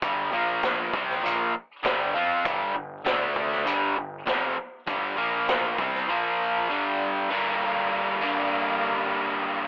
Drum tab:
HH |x---x---x---x---|x---x---x---x---|x---x-----------|----------------|
SD |----o--o----o---|----o--o----o---|----o--o--------|----------------|
BD |o-----o-----o---|o-----o-----o---|o-----o---------|----------------|